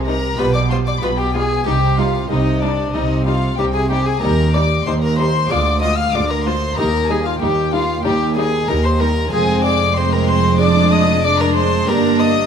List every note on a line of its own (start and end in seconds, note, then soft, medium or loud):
0.00 0.31 C2 medium
0.00 0.28 C3 medium
0.00 0.31 C3 medium
0.00 0.33 D#4 soft
0.00 0.33 G4 medium
0.06 0.14 G3 medium
0.06 0.14 D#4 medium
0.06 0.40 A#4 medium
0.06 0.38 A#5 loud
0.35 0.95 B1 medium
0.35 0.95 B2 medium
0.35 0.92 B2 medium
0.35 0.46 G3 medium
0.35 1.61 F4 soft
0.35 0.46 F4 medium
0.35 1.62 G4 soft
0.35 0.54 B4 medium
0.35 0.54 B5 loud
0.54 0.61 D5 medium
0.54 0.70 D6 medium
0.70 0.78 G3 medium
0.70 0.78 F4 medium
0.70 0.77 C5 medium
0.70 0.77 C6 medium
0.87 0.93 D5 medium
0.87 1.02 D6 medium
1.02 1.59 B1 medium
1.02 1.59 B2 medium
1.02 1.56 B2 medium
1.02 1.10 G3 medium
1.02 1.11 F4 medium
1.02 1.09 B4 medium
1.02 1.18 B5 medium
1.18 1.34 G4 medium
1.18 1.34 G5 medium
1.34 1.42 G3 medium
1.34 1.42 F4 medium
1.34 1.66 G#4 medium
1.34 1.67 G#5 medium
1.63 2.23 C2 medium
1.63 2.20 C3 medium
1.63 2.23 C3 medium
1.63 1.74 G3 medium
1.63 4.17 D#4 medium
1.63 1.74 D#4 medium
1.63 4.18 G4 soft
1.63 2.00 G4 medium
1.63 1.99 G5 medium
1.98 2.06 G3 medium
1.98 2.06 D#4 medium
1.98 2.31 F4 medium
1.98 2.30 F5 medium
2.30 2.87 C2 medium
2.30 2.84 C3 medium
2.30 2.87 C3 medium
2.30 2.39 G3 medium
2.30 2.39 D#4 medium
2.30 2.63 D#4 medium
2.30 2.61 D#5 medium
2.61 2.70 G3 medium
2.61 2.96 D4 medium
2.61 2.70 D#4 medium
2.61 2.94 D5 medium
2.94 3.51 C2 medium
2.94 3.51 C3 medium
2.94 3.48 C3 medium
2.94 3.03 G3 medium
2.94 3.26 D#4 medium
2.94 3.03 D#4 medium
2.94 3.25 D#5 medium
3.25 3.34 G3 medium
3.25 3.35 D#4 medium
3.25 3.58 F4 medium
3.25 3.57 F5 medium
3.58 4.15 C2 medium
3.58 4.12 C3 medium
3.58 4.15 C3 medium
3.58 3.66 G3 medium
3.58 3.67 D#4 medium
3.58 3.65 G4 medium
3.58 3.74 G5 medium
3.74 3.90 G#4 medium
3.74 3.80 G#5 medium
3.90 3.99 G3 medium
3.90 3.98 D#4 medium
3.90 4.07 G4 medium
3.90 4.06 G5 medium
4.05 4.22 G#4 medium
4.05 4.22 G#5 medium
4.19 4.76 D#2 medium
4.19 4.79 D#2 medium
4.19 5.45 D#4 medium
4.19 4.30 D#4 medium
4.19 5.46 G4 medium
4.19 4.56 A#4 medium
4.19 4.54 A#5 medium
4.23 4.79 D#2 medium
4.23 4.31 G3 medium
4.54 4.63 G3 medium
4.54 4.63 D#4 medium
4.54 4.86 D5 medium
4.54 4.86 D6 loud
4.86 5.43 D#2 medium
4.86 5.40 D#2 medium
4.86 5.43 D#2 medium
4.86 4.94 G3 medium
4.86 4.94 D#4 medium
4.86 4.93 C5 medium
4.86 5.02 C6 medium
5.02 5.18 A#4 medium
5.02 5.18 A#5 medium
5.18 5.27 G3 medium
5.18 5.26 D#4 medium
5.18 5.53 C5 medium
5.18 5.50 C6 loud
5.46 6.72 A#3 medium
5.46 6.73 F4 medium
5.46 6.74 G#4 medium
5.50 6.04 D2 medium
5.50 6.07 D2 medium
5.50 5.58 G#3 medium
5.50 5.58 F4 medium
5.50 5.81 D5 medium
5.50 5.82 D6 loud
5.81 5.91 G#3 medium
5.81 5.90 F4 medium
5.81 5.98 D#5 medium
5.81 5.98 D#6 medium
5.98 6.16 F5 medium
5.98 6.14 F6 loud
6.13 6.70 D2 medium
6.13 6.68 D2 medium
6.13 6.71 D2 medium
6.13 6.22 G#3 medium
6.13 6.23 F4 medium
6.13 6.32 D5 medium
6.13 6.30 D6 loud
6.28 6.48 A#4 medium
6.28 6.45 A#5 medium
6.44 6.54 G#3 medium
6.44 6.54 F4 medium
6.44 6.78 C5 medium
6.44 6.77 C6 loud
6.75 7.34 D#2 medium
6.75 7.31 D#2 medium
6.75 7.34 D#2 medium
6.75 6.86 G3 medium
6.75 9.27 D#4 medium
6.75 6.86 D#4 medium
6.75 9.28 G4 medium
6.75 7.12 A#4 medium
6.75 7.09 A#5 loud
7.08 7.18 G3 medium
7.08 7.17 D#4 medium
7.08 7.28 G#4 medium
7.08 7.25 G#5 medium
7.24 7.41 F4 medium
7.24 7.40 F5 medium
7.40 7.95 D#2 medium
7.40 7.97 D#2 medium
7.40 7.49 G3 medium
7.40 7.49 D#4 medium
7.40 7.73 G4 medium
7.40 7.72 G5 medium
7.72 7.81 G3 medium
7.72 7.81 D#4 medium
7.72 8.04 F4 medium
7.72 8.05 F5 medium
8.04 8.61 D#2 medium
8.04 8.59 D#2 medium
8.04 8.62 D#2 medium
8.04 8.12 G3 medium
8.04 8.13 D#4 medium
8.04 8.36 G4 medium
8.04 8.36 G5 loud
8.36 8.45 G3 medium
8.36 8.45 D#4 medium
8.36 8.70 G#4 medium
8.36 8.68 G#5 loud
8.68 9.25 D#2 medium
8.68 9.22 D#2 medium
8.68 8.77 G3 medium
8.68 8.77 D#4 medium
8.68 8.87 A#4 medium
8.68 8.84 A#5 loud
8.85 9.02 C5 medium
8.85 8.91 C6 medium
8.99 9.08 G3 medium
8.99 9.09 D#4 medium
8.99 9.32 A#4 medium
8.99 9.31 A#5 medium
9.29 11.84 F2 medium
9.29 10.55 G#3 medium
9.29 10.55 C4 medium
9.29 9.93 C4 medium
9.29 10.56 F4 medium
9.29 9.63 G#5 loud
9.33 11.84 F1 medium
9.33 11.84 F2 medium
9.33 9.93 G#3 medium
9.33 9.64 G#4 medium
9.63 9.99 D5 medium
9.63 9.95 D6 loud
9.95 10.59 G#3 medium
9.95 10.59 C4 medium
9.95 10.14 C5 medium
9.95 10.12 C6 medium
10.13 10.30 A#4 medium
10.13 10.29 A#5 loud
10.28 10.60 C5 medium
10.28 10.59 C6 loud
10.56 11.82 G#3 medium
10.56 11.83 D4 medium
10.56 11.84 G#4 medium
10.56 10.91 D6 loud
10.60 11.23 G#3 medium
10.60 11.23 D4 medium
10.60 10.94 D5 medium
10.92 11.26 D#5 medium
10.92 11.24 D#6 loud
11.24 11.87 G#3 medium
11.24 11.87 D4 medium
11.24 11.42 D5 loud
11.24 11.40 D6 loud
11.40 11.56 A#4 medium
11.40 11.56 A#5 loud
11.56 11.90 C5 medium
11.56 11.88 C6 loud
11.84 12.46 A#3 medium
11.84 12.46 D4 medium
11.84 12.46 G4 medium
11.88 12.46 G1 medium
11.88 12.46 G2 medium
11.88 12.46 A#3 medium
11.88 12.46 D4 medium
11.88 12.21 A#4 medium
11.88 12.20 A#5 loud
12.20 12.46 D#5 medium
12.20 12.46 D#6 loud